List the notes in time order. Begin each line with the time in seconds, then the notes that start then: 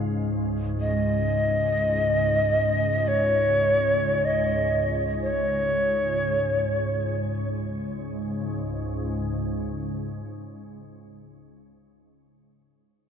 Already playing: C#2 G#2
0.81 D#5
3.08 C#5
4.25 D#5
5.22 C#5
7.52 C#2 G#2